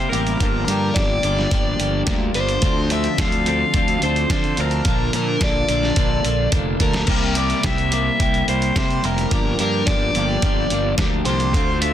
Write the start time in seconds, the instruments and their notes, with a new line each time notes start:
Already playing: clean electric guitar G3 A#3 E4 G4
0.09 fingered electric bass A1, clean electric guitar C3 G3 A#3 E4 G4, overdriven electric guitar A#4, closed hi-hat
0.27 closed hi-hat
0.39 fingered electric bass G1, clean electric guitar G2 D3 F3 A#3 D4 G4, kick, closed hi-hat
0.65 fingered electric bass G2, clean electric guitar G2 D3, overdriven electric guitar A#4, closed hi-hat
0.69 clean electric guitar F3 A#3 D4 G4
0.94 fingered electric bass G1, clean electric guitar G2 D3 F3 A#3 D4 G4, overdriven electric guitar D5, kick, snare, closed hi-hat
1.22 fingered electric bass G1, clean electric guitar G2 D3 F3 A#3 D4 G4, closed hi-hat
1.39 snare
1.50 fingered electric bass G1, clean electric guitar G2 D3 F3 A#3 D4 G4, kick, closed hi-hat
1.78 fingered electric bass G1, clean electric guitar G2 D3 F3 A#3 D4 G4, closed hi-hat
2.07 fingered electric bass D2, clean electric guitar G2 D3 F3 A#3 D4 G4, kick, snare, closed hi-hat
2.34 fingered electric bass G1, clean electric guitar G2 D3 F3 A#3 D4 G4, overdriven electric guitar C5, closed hi-hat
2.49 closed hi-hat
2.62 fingered electric bass D2, clean electric guitar D3 F3 C4 D4 A4, kick, closed hi-hat
2.90 clean electric guitar D3 F3 C4 D4 A4, overdriven electric guitar E5, closed hi-hat
3.04 closed hi-hat
3.18 fingered electric bass D2, clean electric guitar D3 F3 C4 D4 A4, overdriven electric guitar F5, kick, snare, closed hi-hat
3.32 closed hi-hat
3.45 clean electric guitar D3 F3 C4 D4 A4, overdriven electric guitar F5, closed hi-hat
3.74 fingered electric bass D2, clean electric guitar D3 F3 C4 D4 A4, kick, closed hi-hat
3.88 closed hi-hat
4.02 fingered electric bass D2, clean electric guitar D3 F3 C4 D4 A4, overdriven electric guitar C5, closed hi-hat
4.16 closed hi-hat
4.30 clean electric guitar D3 F3 C4 D4 A4, fingered electric bass D3, overdriven electric guitar C5, kick, snare, closed hi-hat
4.44 closed hi-hat
4.57 fingered electric bass D2, clean electric guitar D3 F3 C4 D4 A4, overdriven electric guitar A#4, closed hi-hat
4.71 closed hi-hat
4.85 fingered electric bass A#1, clean electric guitar A#2 D3 F3 A#3 D4 A4, kick, closed hi-hat
5.13 clean electric guitar A#2 D3 F3 A#3 D4 A4, fingered electric bass A#2, overdriven electric guitar A#4, closed hi-hat
5.41 fingered electric bass A#1, clean electric guitar A#2 D3 F3 A#3 D4 A4, overdriven electric guitar D5, kick, snare, closed hi-hat
5.68 fingered electric bass A#1, clean electric guitar A#2 D3 F3 A#3 D4 A4, closed hi-hat
5.83 snare
5.96 fingered electric bass A#1, clean electric guitar A#2 D3 F3 A#3 D4 A4, kick, closed hi-hat
6.23 fingered electric bass A#1, clean electric guitar A#2 D3 F3 A#3 D4 A4, closed hi-hat
6.51 fingered electric bass F1, clean electric guitar A#2 D3 F3 A#3 D4 A4, kick, closed hi-hat
6.79 fingered electric bass D2, clean electric guitar A#2 D3 F3 A#3 D4 A4, overdriven electric guitar A#4, kick, closed hi-hat
6.93 snare, closed hi-hat
7.07 fingered electric bass C2, clean electric guitar C3 G3 A#3 E4 G4, kick, crash
7.35 clean electric guitar C3 G3 A#3 E4 G4, overdriven electric guitar D5, closed hi-hat
7.50 closed hi-hat
7.63 fingered electric bass C2, clean electric guitar C3 G3 A#3 E4 G4, overdriven electric guitar E5, kick, snare, closed hi-hat
7.78 closed hi-hat
7.91 clean electric guitar C3 G3 A#3 E4 G4, overdriven electric guitar E5, closed hi-hat
8.19 fingered electric bass C2, clean electric guitar C3 G3 A#3 E4 G4, kick, closed hi-hat
8.34 closed hi-hat
8.47 fingered electric bass C2, clean electric guitar C3 G3 A#3 E4 G4, overdriven electric guitar C5, closed hi-hat
8.62 closed hi-hat
8.75 clean electric guitar C3 G3 A#3 E4 G4, fingered electric bass C3, overdriven electric guitar C5, kick, snare, closed hi-hat
8.90 closed hi-hat
9.03 fingered electric bass F1, clean electric guitar C3 G3 A#3 E4 G4, overdriven electric guitar A#4, closed hi-hat
9.18 closed hi-hat
9.31 fingered electric bass G1, clean electric guitar G2 D3 F3 A#3 D4 G4, kick, closed hi-hat
9.59 clean electric guitar G2 D3 F3 A#3 D4 G4, fingered electric bass G2, overdriven electric guitar A#4, closed hi-hat
9.86 fingered electric bass G1, clean electric guitar G2 D3 F3 A#3 D4 G4, overdriven electric guitar D5, kick, snare, closed hi-hat
10.15 fingered electric bass G1, clean electric guitar G2 D3 F3 A#3 D4 G4, closed hi-hat
10.42 fingered electric bass G1, clean electric guitar G2 D3 F3 A#3 D4 G4, kick, closed hi-hat
10.70 fingered electric bass G1, clean electric guitar G2 D3 F3 A#3 D4 G4, closed hi-hat
10.98 fingered electric bass D2, clean electric guitar G2 D3 F3 A#3 D4 G4, kick, snare, closed hi-hat
11.25 fingered electric bass C2, clean electric guitar G2 D3 F3 A#3 D4 G4, overdriven electric guitar C5, closed hi-hat
11.40 closed hi-hat
11.54 fingered electric bass D2, clean electric guitar D3 A3 C4 F4, kick, closed hi-hat
11.81 clean electric guitar D3 A3 C4 F4, overdriven electric guitar E5, closed hi-hat